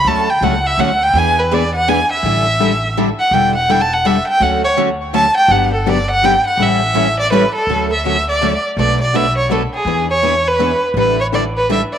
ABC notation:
X:1
M:3/4
L:1/16
Q:"Swing" 1/4=165
K:D
V:1 name="Violin"
a2 g2 f2 e2 f2 g2 | ^g2 B2 d2 f2 g2 e2- | e8 z2 f2 | g2 f2 (3g2 a2 f2 e2 g2 |
f2 c2 z4 a2 g2 | f2 A2 d2 f2 g2 f2 | e6 d2 B2 A2- | A2 e2 e2 d4 z2 |
d2 d2 e2 c2 A2 ^G2- | ^G2 c4 B4 z2 | B2 c2 d2 B2 e2 d2 |]
V:2 name="Steel-string acoustic guitar"
[D,A,CFA]2 z2 [D,A,CFA] z3 [D,A,CFA] z3 | [E,B,D^GB]2 z2 [E,B,DGB] z3 [E,B,DGB] z3 | [D,G,DEA]2 z2 [D,G,DEA] z3 [D,G,DEA] z3 | [D,G,DEA]2 z2 [D,G,DEA] z3 [D,G,DEA] z3 |
[D,A,CFA]2 z2 [D,A,CFA] z3 [D,A,CFA] z3 | [D,F,B,DG]2 z2 [D,F,B,DG] z3 [D,F,B,DG] z3 | [E,G,CEA]2 z2 [E,G,CEA] z3 [E,G,CEA] z3 | [D,A,CFA]2 z2 [D,A,CFA] z3 [D,A,CFA] z3 |
[B,,F,A,DFB]2 z2 [B,,F,A,DFB] z3 [B,,F,A,DFB] z3 | [E,B,D^GB]2 z2 [E,B,DGB] z3 [E,B,DGB] z3 | [D,G,DEA]2 z2 [D,G,DEA] z3 [D,G,DEA] z3 |]
V:3 name="Steel-string acoustic guitar"
[D,F,A,CF]2 z2 [D,F,A,CF] z3 [D,F,A,CF] z3 | [E,B,D^G]2 z2 [E,B,DG] z3 [E,B,DG] z3 | [D,G,DEA]2 z2 [D,G,DEA] z3 [D,G,DEA] z3 | [D,G,DEA]2 z2 [D,G,DEA] z3 [D,G,DEA] z3 |
[D,F,A,CF]2 z2 [D,F,A,CF] z3 [D,F,A,CF] z3 | [D,F,B,DG]2 z2 [D,F,B,DG] z3 [D,F,B,DG] z3 | [E,G,CEA]2 z2 [E,G,CEA] z3 [E,G,CEA] z3 | [D,F,A,CF]2 z2 [D,F,A,CF] z3 [D,F,A,CF] z3 |
[B,,F,A,DF]2 z2 [B,,F,A,DF] z3 [B,,F,A,DF] z3 | [E,B,D^G]2 z2 [E,B,DG] z3 [E,B,DG] z3 | [D,G,DEA]2 z2 [D,G,DEA] z3 [D,G,DEA] z3 |]
V:4 name="Upright bass" clef=bass
D,,4 C,,4 D,,4 | E,,12 | A,,,12 | E,,,12 |
D,,12 | G,,,12 | A,,,12 | D,,12 |
B,,,12 | E,,12 | A,,,12 |]